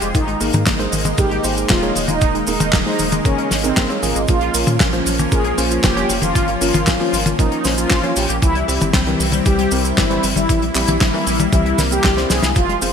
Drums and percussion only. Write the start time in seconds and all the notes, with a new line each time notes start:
0.01 closed hi-hat, cabasa
0.15 kick, closed hi-hat, cabasa
0.28 closed hi-hat
0.41 open hi-hat, cabasa
0.53 closed hi-hat, high tom, cabasa
0.66 kick, snare, clap, closed hi-hat, cabasa
0.80 closed hi-hat
0.92 open hi-hat, cabasa
1.05 closed hi-hat, high tom, cabasa
1.18 kick, closed hi-hat, cabasa
1.31 closed hi-hat
1.44 open hi-hat, cabasa
1.57 closed hi-hat, cabasa
1.69 kick, snare, clap, closed hi-hat, cabasa
1.83 closed hi-hat
1.95 open hi-hat, cabasa
2.08 closed hi-hat, high tom, cabasa
2.21 kick, closed hi-hat, cabasa
2.35 closed hi-hat
2.47 open hi-hat, cabasa
2.60 closed hi-hat, high tom, cabasa
2.72 kick, snare, clap, closed hi-hat, cabasa
2.87 open hi-hat
2.99 open hi-hat, cabasa
3.12 closed hi-hat, high tom, cabasa
3.25 kick, closed hi-hat, cabasa
3.38 closed hi-hat
3.51 snare, open hi-hat, cabasa
3.64 closed hi-hat, cabasa
3.77 kick, snare, clap, closed hi-hat, cabasa
3.90 closed hi-hat
4.03 open hi-hat, cabasa
4.15 closed hi-hat, cabasa
4.28 kick, closed hi-hat, cabasa
4.41 closed hi-hat
4.54 open hi-hat, cabasa
4.67 closed hi-hat, high tom, cabasa
4.80 kick, snare, clap, closed hi-hat, cabasa
4.93 closed hi-hat
5.06 open hi-hat, cabasa
5.18 closed hi-hat, high tom, cabasa
5.32 kick, closed hi-hat, cabasa
5.45 closed hi-hat
5.58 open hi-hat, cabasa
5.71 closed hi-hat, cabasa
5.84 kick, snare, clap, closed hi-hat, cabasa
5.97 closed hi-hat
6.09 open hi-hat, cabasa
6.22 closed hi-hat, high tom, cabasa
6.35 kick, closed hi-hat, cabasa
6.48 closed hi-hat
6.61 open hi-hat, cabasa
6.74 closed hi-hat, high tom, cabasa
6.87 kick, snare, clap, closed hi-hat, cabasa
7.00 open hi-hat
7.13 open hi-hat, cabasa
7.25 closed hi-hat, high tom, cabasa
7.39 kick, closed hi-hat, cabasa
7.52 closed hi-hat
7.64 snare, open hi-hat, cabasa
7.77 closed hi-hat, cabasa
7.90 kick, snare, clap, closed hi-hat, cabasa
8.03 closed hi-hat
8.16 open hi-hat, cabasa
8.29 closed hi-hat, cabasa
8.42 kick, closed hi-hat, cabasa
8.55 closed hi-hat
8.68 open hi-hat, cabasa
8.80 closed hi-hat, high tom, cabasa
8.93 kick, snare, clap, closed hi-hat, cabasa
9.06 closed hi-hat
9.20 open hi-hat, cabasa
9.32 closed hi-hat, high tom, cabasa
9.46 kick, closed hi-hat, cabasa
9.59 closed hi-hat
9.71 open hi-hat, cabasa
9.85 closed hi-hat, cabasa
9.98 kick, snare, clap, closed hi-hat, cabasa
10.11 closed hi-hat
10.23 open hi-hat, cabasa
10.36 closed hi-hat, high tom, cabasa
10.49 kick, closed hi-hat, cabasa
10.62 closed hi-hat
10.75 clap, open hi-hat, cabasa
10.87 closed hi-hat, high tom, cabasa
11.01 kick, snare, clap, closed hi-hat, cabasa
11.14 open hi-hat
11.26 open hi-hat, cabasa
11.39 closed hi-hat, high tom, cabasa
11.53 kick, closed hi-hat, cabasa
11.66 closed hi-hat
11.78 snare, open hi-hat, high tom, cabasa
11.91 closed hi-hat, cabasa
12.04 kick, snare, clap, closed hi-hat, cabasa
12.17 snare, closed hi-hat
12.30 snare, open hi-hat, cabasa
12.43 snare, closed hi-hat, cabasa
12.56 kick, closed hi-hat, cabasa
12.69 closed hi-hat
12.82 open hi-hat, cabasa